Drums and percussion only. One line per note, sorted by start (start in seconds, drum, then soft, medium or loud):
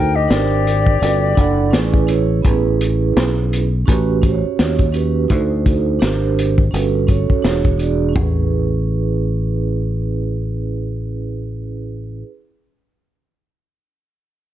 0.31 snare loud
0.31 closed hi-hat medium
0.67 closed hi-hat medium
0.86 kick medium
1.03 closed hi-hat medium
1.37 kick medium
1.37 closed hi-hat medium
1.73 snare loud
1.73 closed hi-hat medium
1.94 kick medium
2.08 closed hi-hat medium
2.45 kick loud
2.45 closed hi-hat medium
2.81 closed hi-hat medium
3.17 snare loud
3.17 closed hi-hat medium
3.53 closed hi-hat medium
3.88 kick medium
3.88 closed hi-hat medium
4.23 kick medium
4.23 closed hi-hat medium
4.59 snare loud
4.59 closed hi-hat medium
4.79 kick medium
4.79 closed hi-hat soft
4.94 closed hi-hat medium
5.30 kick loud
5.30 closed hi-hat medium
5.66 kick medium
5.66 closed hi-hat medium
6.02 snare loud
6.02 closed hi-hat medium
6.39 closed hi-hat medium
6.58 kick medium
6.74 closed hi-hat medium
7.08 kick medium
7.08 closed hi-hat medium
7.30 kick medium
7.44 snare loud
7.44 closed hi-hat medium
7.64 kick medium
7.64 closed hi-hat soft
7.79 closed hi-hat medium
8.16 kick medium
8.16 floor tom medium